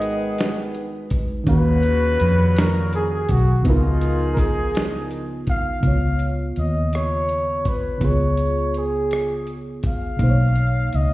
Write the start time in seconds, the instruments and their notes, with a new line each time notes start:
Already playing: fingered electric bass G#1, horn section D#3 B3 G#4, fm electric piano G#3 D#4 F#4 B4, flugelhorn D#5
0.02 closed hi-hat
0.38 snare, closed hi-hat
0.74 closed hi-hat
1.10 kick, closed hi-hat
1.44 fingered electric bass D#2, horn section A#2 C#3 F#4, fm electric piano D#3 C#4, kick, closed hi-hat
1.48 fm electric piano F#4 F5, flugelhorn B4
1.83 closed hi-hat
2.20 fingered electric bass F2, closed hi-hat
2.56 flugelhorn A#4, snare, closed hi-hat
2.93 flugelhorn G#4, closed hi-hat
3.13 flugelhorn G#4
3.29 fingered electric bass B1, flugelhorn F#4, kick, closed hi-hat
3.62 fingered electric bass C#2, fm electric piano C#3 B3 D#4, horn section F3 D#4 G#4, kick, closed hi-hat
3.67 flugelhorn F4, fm electric piano F4 A#4
4.01 closed hi-hat
4.33 flugelhorn A#4, kick
4.38 flugelhorn G#4, closed hi-hat
4.75 snare, closed hi-hat
5.11 closed hi-hat
5.47 flugelhorn F5, kick, closed hi-hat
5.80 fingered electric bass C#2, fm electric piano C#3 B3, kick, closed hi-hat
5.85 fm electric piano F4 C#5
6.19 closed hi-hat
6.56 fingered electric bass D#2, flugelhorn D#5, closed hi-hat
6.93 flugelhorn C#5, cross-stick, closed hi-hat
7.29 closed hi-hat
7.65 fingered electric bass B1, flugelhorn B4, kick, closed hi-hat
7.98 fm electric piano C#3 B3, kick, closed hi-hat
8.02 fingered electric bass C#2, fm electric piano F4 G#4, flugelhorn C#5
8.37 closed hi-hat
8.74 flugelhorn G#4, closed hi-hat
9.11 cross-stick, closed hi-hat
9.47 closed hi-hat
9.83 kick, closed hi-hat
9.87 flugelhorn F5
10.17 fingered electric bass B1, fm electric piano B2 A#3, kick, closed hi-hat
10.22 fm electric piano D#4 C5
10.30 fm electric piano C#5
10.55 closed hi-hat
10.93 fingered electric bass C#2, flugelhorn D#5, closed hi-hat